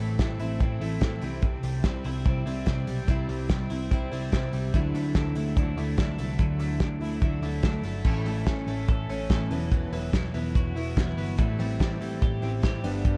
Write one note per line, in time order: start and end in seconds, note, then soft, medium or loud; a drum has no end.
0.00 0.15 A1 loud
0.00 0.19 A2 medium
0.00 0.18 E3 medium
0.00 0.18 A3 medium
0.00 0.80 A3 medium
0.00 0.19 C4 medium
0.00 0.20 C4 medium
0.00 0.20 E4 medium
0.00 0.39 E4 medium
0.19 0.36 A1 loud
0.19 0.39 E3 medium
0.19 0.40 A3 medium
0.19 0.39 C4 medium
0.19 0.38 E4 medium
0.19 kick loud
0.19 snare loud
0.19 closed hi-hat medium
0.39 0.56 A1 medium
0.39 0.60 A3 medium
0.39 0.60 C4 medium
0.39 0.60 E4 medium
0.39 open hi-hat medium
0.60 0.77 A1 medium
0.60 0.81 E3 medium
0.60 0.81 A3 medium
0.60 0.81 C4 medium
0.60 0.80 E4 medium
0.60 kick loud
0.60 closed hi-hat medium
0.81 0.98 A1 medium
0.81 1.01 A3 soft
0.81 1.01 C4 medium
0.81 1.02 E4 medium
0.81 open hi-hat medium
1.01 1.19 A1 medium
1.01 1.22 E3 medium
1.01 1.22 A3 medium
1.01 1.22 C4 medium
1.01 1.21 E4 medium
1.01 kick medium
1.01 snare loud
1.01 closed hi-hat medium
1.21 1.56 C2 medium
1.21 1.83 C3 medium
1.21 1.84 G3 medium
1.21 1.85 C4 medium
1.21 1.86 E4 medium
1.21 open hi-hat medium
1.42 3.07 C3 medium
1.42 kick loud
1.42 closed hi-hat medium
1.63 1.81 C2 loud
1.63 2.45 G3 medium
1.63 open hi-hat medium
1.84 2.01 C2 medium
1.84 2.05 C3 medium
1.84 2.05 G3 medium
1.84 2.05 C4 medium
1.84 2.04 E4 medium
1.84 kick loud
1.84 snare loud
1.84 closed hi-hat medium
2.04 2.22 C2 medium
2.04 2.24 G3 soft
2.04 2.25 C4 soft
2.04 2.26 E4 medium
2.04 open hi-hat medium
2.25 2.43 C2 medium
2.25 2.46 C3 medium
2.25 2.46 G3 medium
2.25 2.46 C4 medium
2.25 2.45 E4 medium
2.25 kick loud
2.25 closed hi-hat medium
2.46 2.63 C2 medium
2.46 2.66 G3 soft
2.46 2.67 C4 soft
2.46 2.67 E4 soft
2.46 open hi-hat medium
2.66 2.84 C2 loud
2.66 3.07 C3 medium
2.66 3.08 G3 medium
2.66 3.08 C4 medium
2.66 3.09 E4 medium
2.66 kick loud
2.66 snare loud
2.66 closed hi-hat medium
2.87 3.05 B1 medium
2.87 3.27 G3 medium
2.87 open hi-hat medium
3.08 3.25 C2 medium
3.08 3.49 C3 medium
3.08 3.49 G3 medium
3.08 3.50 C4 medium
3.08 3.52 E4 medium
3.08 kick loud
3.08 closed hi-hat medium
3.28 3.46 C2 medium
3.28 4.11 G3 medium
3.28 open hi-hat medium
3.50 3.67 C2 medium
3.50 3.71 C3 medium
3.50 3.71 G3 medium
3.50 3.71 C4 medium
3.50 3.69 E4 medium
3.50 kick loud
3.50 snare loud
3.50 closed hi-hat medium
3.70 3.87 C2 medium
3.70 3.91 G3 medium
3.70 3.92 C4 medium
3.70 3.91 E4 medium
3.70 open hi-hat medium
3.91 4.08 C2 medium
3.91 4.12 C3 medium
3.91 4.12 G3 medium
3.91 4.11 C4 medium
3.91 4.10 E4 medium
3.91 kick loud
3.91 closed hi-hat medium
4.11 4.29 C2 medium
4.11 4.32 G3 soft
4.11 4.32 C4 medium
4.11 4.32 E4 medium
4.11 open hi-hat medium
4.32 4.49 C2 loud
4.32 4.73 C3 medium
4.32 4.74 G3 medium
4.32 4.74 C4 medium
4.32 4.75 E4 medium
4.32 kick medium
4.32 snare loud
4.32 closed hi-hat medium
4.53 4.70 C2 medium
4.53 4.78 G3 medium
4.53 open hi-hat medium
4.74 4.91 D2 medium
4.74 5.14 D3 medium
4.74 5.15 F#3 medium
4.74 5.16 A3 medium
4.74 5.17 E4 medium
4.74 kick loud
4.74 closed hi-hat medium
4.94 5.12 D2 loud
4.94 5.77 A3 medium
4.94 open hi-hat medium
5.15 5.32 D2 loud
5.15 5.36 D3 medium
5.15 5.36 F#3 medium
5.15 5.36 A3 medium
5.15 5.55 D4 medium
5.15 5.35 E4 medium
5.15 kick loud
5.15 snare loud
5.15 closed hi-hat medium
5.35 5.53 D2 medium
5.35 5.56 F#3 medium
5.35 5.57 A3 medium
5.35 5.57 E4 medium
5.35 open hi-hat medium
5.57 5.74 D2 medium
5.57 5.77 D3 medium
5.57 5.78 F#3 medium
5.57 5.78 A3 medium
5.57 5.97 D4 medium
5.57 5.76 E4 medium
5.57 kick loud
5.57 closed hi-hat medium
5.77 5.94 D2 medium
5.77 5.98 F#3 soft
5.77 5.98 A3 soft
5.77 5.98 E4 medium
5.77 open hi-hat medium
5.97 6.15 D2 medium
5.97 6.38 D3 medium
5.97 6.39 F#3 medium
5.97 6.40 A3 medium
5.97 6.80 D4 medium
5.97 6.41 E4 medium
5.97 kick loud
5.97 snare loud
5.97 closed hi-hat medium
6.18 6.36 C2 medium
6.18 6.60 A3 medium
6.18 open hi-hat medium
6.39 6.56 D2 loud
6.39 6.79 D3 medium
6.39 6.80 F#3 medium
6.39 6.82 A3 medium
6.39 6.82 E4 medium
6.39 kick loud
6.39 closed hi-hat medium
6.59 6.77 D2 loud
6.59 7.43 A3 medium
6.59 open hi-hat medium
6.80 6.98 D2 loud
6.80 7.01 D3 medium
6.80 7.02 F#3 medium
6.80 7.01 A3 medium
6.80 7.21 D4 medium
6.80 7.00 E4 medium
6.80 kick loud
6.80 snare loud
6.80 closed hi-hat medium
7.01 7.18 D2 medium
7.01 7.22 F#3 soft
7.01 7.22 A3 medium
7.01 7.22 E4 medium
7.01 open hi-hat medium
7.22 7.39 D2 medium
7.22 7.43 D3 medium
7.22 7.43 F#3 medium
7.22 7.43 A3 medium
7.22 7.63 D4 medium
7.22 7.41 E4 medium
7.22 kick loud
7.22 closed hi-hat medium
7.42 7.60 D2 medium
7.42 7.62 F#3 soft
7.42 7.63 A3 soft
7.42 7.64 E4 medium
7.42 open hi-hat medium
7.63 7.81 D2 medium
7.63 8.05 D3 medium
7.63 8.05 F#3 medium
7.63 8.05 A3 medium
7.63 8.10 D4 medium
7.63 8.06 E4 medium
7.63 kick loud
7.63 snare loud
7.63 closed hi-hat medium
7.83 8.01 G1 medium
7.83 8.10 A3 medium
7.83 open hi-hat medium
8.04 8.22 A1 loud
8.04 8.26 A2 medium
8.04 8.26 E3 medium
8.04 8.26 A3 medium
8.04 8.26 C#4 medium
8.04 8.25 E4 medium
8.04 kick loud
8.04 crash loud
8.25 8.42 A1 loud
8.25 8.46 A3 medium
8.25 8.47 C#4 soft
8.25 8.47 E4 medium
8.25 open hi-hat medium
8.46 8.64 A1 loud
8.46 8.67 E3 medium
8.46 8.68 A3 medium
8.46 8.67 C#4 medium
8.46 8.66 E4 medium
8.46 kick loud
8.46 snare loud
8.46 hi-hat pedal medium
8.46 ride medium
8.67 8.84 A1 medium
8.67 9.10 A3 soft
8.67 9.09 C#4 medium
8.67 9.09 E4 medium
8.67 open hi-hat medium
8.88 9.06 A1 medium
8.88 9.29 A4 medium
8.88 kick loud
8.88 hi-hat pedal medium
8.88 ride soft
9.08 9.26 A1 medium
9.08 9.29 A3 soft
9.08 9.30 C#4 medium
9.08 9.30 E4 medium
9.08 open hi-hat medium
9.30 9.47 A1 loud
9.30 9.51 E3 medium
9.30 9.51 A3 medium
9.30 9.51 C#4 medium
9.30 9.49 E4 medium
9.30 9.55 A4 medium
9.30 kick loud
9.30 snare loud
9.30 hi-hat pedal medium
9.30 ride medium
9.51 9.85 E1 medium
9.51 9.70 E2 medium
9.51 9.97 E3 medium
9.51 9.93 F#3 medium
9.51 9.92 B3 medium
9.51 9.92 E4 medium
9.51 open hi-hat medium
9.71 11.38 E2 medium
9.71 kick loud
9.71 hi-hat pedal medium
9.71 ride medium
9.92 10.10 E1 loud
9.92 10.13 F#3 medium
9.92 10.13 B3 medium
9.92 10.13 E4 medium
9.92 open hi-hat medium
10.13 10.30 E1 loud
10.13 10.34 E3 medium
10.13 10.35 F#3 medium
10.13 10.34 B3 medium
10.13 10.33 E4 medium
10.13 kick loud
10.13 snare loud
10.13 hi-hat pedal medium
10.13 ride medium
10.34 10.51 E1 medium
10.34 10.77 F#3 medium
10.34 10.76 B3 soft
10.34 10.76 E4 medium
10.34 open hi-hat medium
10.55 10.72 E1 medium
10.55 10.96 F#4 medium
10.55 kick loud
10.55 hi-hat pedal medium
10.55 ride soft
10.76 10.93 E1 medium
10.76 10.95 F#3 soft
10.76 10.96 B3 medium
10.76 10.97 E4 medium
10.76 open hi-hat medium
10.96 11.14 E1 loud
10.96 11.37 E3 medium
10.96 11.38 F#3 medium
10.96 11.38 B3 medium
10.96 11.38 E4 medium
10.96 11.43 F#4 medium
10.96 kick loud
10.96 snare loud
10.96 hi-hat pedal medium
10.96 ride medium
11.17 11.35 G1 medium
11.17 11.43 B3 medium
11.17 open hi-hat medium
11.37 11.56 A1 loud
11.37 11.59 A2 medium
11.37 11.59 E3 medium
11.37 11.59 G3 medium
11.37 11.58 C4 medium
11.37 11.57 E4 medium
11.37 kick loud
11.37 hi-hat pedal medium
11.37 ride medium
11.58 11.76 A1 loud
11.58 11.79 G3 medium
11.58 11.79 C4 medium
11.58 11.80 E4 medium
11.58 open hi-hat medium
11.79 11.97 A1 medium
11.79 12.00 E3 medium
11.79 12.01 G3 medium
11.79 12.00 C4 medium
11.79 11.99 E4 medium
11.79 kick loud
11.79 snare loud
11.79 hi-hat pedal medium
11.79 ride medium
12.00 12.18 A1 medium
12.00 12.44 G3 soft
12.00 12.42 C4 medium
12.00 12.41 E4 medium
12.00 open hi-hat medium
12.22 12.39 A1 loud
12.22 12.64 G4 medium
12.22 kick loud
12.22 hi-hat pedal medium
12.22 ride soft
12.42 12.60 A1 medium
12.42 12.62 G3 soft
12.42 12.63 C4 medium
12.42 12.63 E4 medium
12.42 open hi-hat medium
12.62 12.84 E3 medium
12.62 12.84 G3 medium
12.62 12.84 C4 medium
12.62 12.83 E4 medium
12.62 12.89 G4 medium
12.62 kick loud
12.62 snare loud
12.62 hi-hat pedal medium
12.62 ride medium
12.84 13.17 G1 medium
12.84 13.17 G2 medium
12.84 13.17 D3 medium
12.84 13.17 G3 medium
12.84 13.17 B3 medium
12.84 13.17 D4 medium
12.84 open hi-hat medium
13.05 13.17 G2 medium
13.05 kick loud
13.05 hi-hat pedal medium
13.05 ride medium